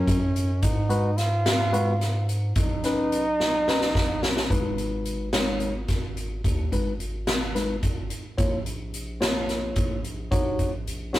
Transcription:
Already playing: tine electric piano F#3 C#4 A#4, flugelhorn C#4
0.07 analog synth bass F#2, kick, closed hi-hat
0.36 closed hi-hat
0.62 analog synth bass G#2, flugelhorn D#4, kick, closed hi-hat
0.89 tine electric piano G#3 F#4 B4, closed hi-hat
1.17 flugelhorn F4, snare, closed hi-hat
1.46 snare, closed hi-hat
1.73 tine electric piano G#3 F#4 B4, closed hi-hat
2.01 snare, closed hi-hat
2.29 closed hi-hat
2.56 analog synth bass B1, flugelhorn D#4, kick, closed hi-hat
2.84 tine electric piano C#4 D#4 B4, snare, closed hi-hat
3.12 closed hi-hat
3.40 snare
3.68 tine electric piano C#4 D#4 B4, snare
3.81 snare
3.95 analog synth bass A#1, kick, snare
4.22 flugelhorn C#4, snare
4.37 snare
4.50 analog synth bass G#1, tine electric piano G#3 D#4 B4, kick, closed hi-hat
4.78 closed hi-hat
5.05 closed hi-hat
5.33 tine electric piano G#3 D#4 C#5, snare, closed hi-hat
5.60 closed hi-hat
5.88 analog synth bass G#1, kick, snare, closed hi-hat
6.17 closed hi-hat
6.44 analog synth bass D#2, kick, closed hi-hat
6.72 analog synth bass G#1, tine electric piano G#3 D#4 B4, kick, closed hi-hat
7.00 analog synth bass G#1, closed hi-hat
7.27 snare, closed hi-hat
7.55 tine electric piano G#3 D#4 B4, snare, closed hi-hat
7.83 analog synth bass G#1, kick, closed hi-hat
8.10 closed hi-hat
8.38 analog synth bass A#1, tine electric piano A#3 F4 C#5, kick, closed hi-hat
8.66 closed hi-hat
8.94 closed hi-hat
9.21 tine electric piano A#3 F4 C#5, snare, closed hi-hat
9.49 snare, closed hi-hat
9.76 analog synth bass A#1, kick, closed hi-hat
10.04 closed hi-hat
10.31 analog synth bass A#1, tine electric piano D#4 F#4 C#5, kick, closed hi-hat
10.59 analog synth bass A#1, kick, closed hi-hat
10.87 analog synth bass A#1, closed hi-hat
11.13 tine electric piano D#4 F#4 C#5, snare, closed hi-hat

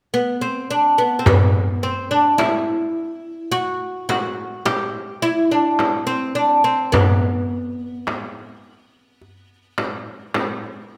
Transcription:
0.14 oud B3
0.41 oud C4
0.71 oud D4
0.98 oud B3
1.19 oud C4
1.26 oud B3, frame drum, darbuka dum
1.83 oud C4
2.11 oud D4
2.38 oud E4, darbuka tek, frame drum
3.52 oud F#4, darbuka ka
4.09 oud F#4, darbuka tek, frame drum
4.66 oud G4, darbuka tek, frame drum
5.22 oud E4
5.51 oud D4
5.79 darbuka tek, frame drum
6.07 oud C4
6.35 oud D4
6.64 oud C4
6.92 oud B3, frame drum, darbuka dum
8.07 darbuka tek, frame drum
9.21 darbuka ka
9.78 darbuka tek, frame drum
10.34 darbuka tek, frame drum

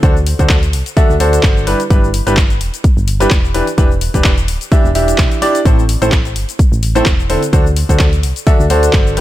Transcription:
0.03 fm bass D2, grand piano D3 D4 F#4 A4 C5, kick, closed hi-hat, shaker
0.17 shaker
0.26 open hi-hat
0.39 fm bass D2, grand piano D3 D4 F#4 A4 C5, kick, closed hi-hat, shaker
0.49 kick, clap, closed hi-hat, shaker
0.63 closed hi-hat, shaker
0.73 fm bass C2, open hi-hat
0.86 closed hi-hat, shaker
0.97 grand piano D3 D4 F#4 A4 E5, kick, closed hi-hat, shaker
1.09 fm bass D2, shaker
1.20 grand piano D3 D4 F#4 A4 C5, open hi-hat
1.33 closed hi-hat, shaker
1.43 fm bass G1, kick, clap, closed hi-hat, shaker
1.57 shaker
1.67 grand piano G3 D4 E4 G4 B4, open hi-hat
1.80 closed hi-hat, shaker
1.90 fm bass G1, grand piano G3 D4 E4 G4 B4, kick, closed hi-hat, shaker
2.04 shaker
2.14 open hi-hat
2.27 fm bass G1, grand piano G3 D4 E4 G4 B4, closed hi-hat, shaker
2.37 kick, clap, closed hi-hat, shaker
2.50 closed hi-hat, shaker
2.61 fm bass E1, open hi-hat
2.74 closed hi-hat, shaker
2.84 kick, closed hi-hat, shaker
2.97 fm bass G1, shaker
3.08 open hi-hat
3.20 grand piano G3 D4 E4 G4 B4, closed hi-hat, shaker
3.31 fm bass E1, kick, clap, closed hi-hat, shaker
3.45 shaker
3.54 grand piano E3 D4 E4 G4 B4, open hi-hat
3.67 closed hi-hat, shaker
3.78 fm bass E1, grand piano E3 D4 E4 G4 B4, kick, closed hi-hat, shaker
3.91 shaker
4.01 open hi-hat
4.14 fm bass E1, grand piano E3 D4 E4 G4 B4, kick, closed hi-hat, shaker
4.24 kick, clap, closed hi-hat, shaker
4.38 closed hi-hat, shaker
4.48 fm bass D1, open hi-hat
4.61 closed hi-hat, shaker
4.72 grand piano E3 D4 E4 G4 E5, kick, closed hi-hat, shaker
4.84 fm bass E1, shaker
4.95 grand piano E3 D4 E4 G4 E5, open hi-hat
5.08 closed hi-hat, shaker
5.18 fm bass B1, kick, clap, closed hi-hat, shaker
5.31 closed hi-hat, shaker
5.42 grand piano D4 E4 G4 D5, open hi-hat
5.55 closed hi-hat, shaker
5.65 fm bass A1, grand piano A2 C4 E4 A4 C5, kick, closed hi-hat, shaker
5.79 shaker
5.89 open hi-hat
6.02 fm bass A1, grand piano A2 C4 E4 A4 C5, closed hi-hat, shaker
6.12 kick, clap, closed hi-hat, shaker
6.25 closed hi-hat, shaker
6.36 fm bass G1, open hi-hat
6.49 closed hi-hat, shaker
6.59 kick, closed hi-hat, shaker
6.72 fm bass A1, shaker
6.83 open hi-hat
6.95 grand piano A2 C4 E4 A4 C5, closed hi-hat, shaker
7.06 fm bass E1, kick, clap, closed hi-hat, shaker
7.20 shaker
7.29 grand piano D3 C4 E4 A4 C5, open hi-hat
7.43 closed hi-hat, shaker
7.53 fm bass D2, grand piano D3 D4 F#4 A4 C5, kick, closed hi-hat, shaker
7.67 shaker
7.76 open hi-hat
7.89 fm bass D2, grand piano D3 D4 F#4 A4 C5, kick, closed hi-hat, shaker
7.99 kick, clap, closed hi-hat, shaker
8.13 closed hi-hat, shaker
8.23 fm bass C2, open hi-hat
8.36 closed hi-hat, shaker
8.47 grand piano D3 D4 F#4 A4 E5, kick, closed hi-hat, shaker
8.60 fm bass D2, shaker
8.70 grand piano D3 D4 F#4 A4 C5, open hi-hat
8.83 closed hi-hat, shaker
8.93 fm bass G1, kick, clap, closed hi-hat, shaker
9.07 shaker
9.17 grand piano G3 D4 E4 G4 B4, open hi-hat

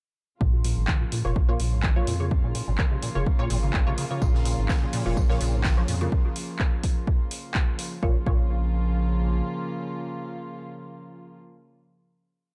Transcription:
0.41 sub bass A#1, acid bass A#2, string section C#3 F3 A#3 F4, kick
0.53 acid bass A#2
0.64 acid bass A#2, open hi-hat
0.77 sub bass G#1, acid bass G#2
0.88 acid bass D#3, kick, clap
1.01 acid bass A#2
1.12 acid bass A#2, open hi-hat
1.25 sub bass F1, acid bass A#2, synth stab A#3 F4 C#5
1.36 sub bass A#1, acid bass A#3, kick
1.49 acid bass A#2, synth stab A#3 F4 C#5
1.60 sub bass A#1, acid bass A#2, open hi-hat
1.72 acid bass G#2
1.83 acid bass D#3, kick, clap
1.96 acid bass F3, synth stab A#3 F4 C#5
2.07 sub bass F2, acid bass A#2, open hi-hat
2.20 acid bass C#3, synth stab A#3 F4 C#5
2.31 acid bass A#3, kick
2.44 sub bass A#1, acid bass A#2
2.55 acid bass A#2, open hi-hat
2.68 sub bass G#1, acid bass A#2
2.78 acid bass D#3, kick, clap
2.92 acid bass C3
3.03 acid bass A#2, open hi-hat
3.15 sub bass F1, acid bass C#3, synth stab A#3 F4 C#5
3.26 acid bass A#3, kick
3.39 acid bass A#2, synth stab A#3 F4 C#5
3.50 sub bass G#1, acid bass A#2, open hi-hat
3.63 acid bass C#3
3.73 sub bass A#1, acid bass A#2, kick, clap
3.87 sub bass A#1, acid bass C3, synth stab A#3 F4 C#5
3.98 acid bass C#3, open hi-hat
4.11 acid bass C#3, synth stab A#3 F4 C#5
4.22 sub bass A#1, acid bass A#2, kick, tambourine
4.34 acid bass A#2, snare
4.45 acid bass A#2, open hi-hat, tambourine
4.58 sub bass G#1, acid bass G#2
4.69 acid bass D#3, kick, snare, clap, tambourine
4.82 acid bass A#2
4.93 acid bass A#2, open hi-hat
5.06 sub bass F1, acid bass A#2, synth stab A#3 F4 C#5
5.17 sub bass A#1, acid bass A#3, kick, tambourine
5.30 acid bass A#2, synth stab A#3 F4 C#5, snare
5.41 sub bass A#1, acid bass A#2, open hi-hat, tambourine
5.53 acid bass G#2
5.64 acid bass D#3, kick, snare, clap, tambourine
5.77 acid bass F3, synth stab A#3 F4 C#5
5.88 sub bass F2, acid bass A#2, open hi-hat, tambourine
6.01 acid bass C#3, synth stab A#3 F4 C#5, closed hi-hat
6.12 kick
6.36 open hi-hat
6.59 kick, clap
6.83 kick, open hi-hat
7.07 kick
7.31 open hi-hat
7.54 kick, clap
7.79 open hi-hat
8.03 sub bass A#1, acid bass A#2, string section C#3 F3 A#3 F4, synth stab A#3 F4 C#5, kick
8.26 sub bass A#1, acid bass A#2, synth stab A#3 F4 C#5, kick

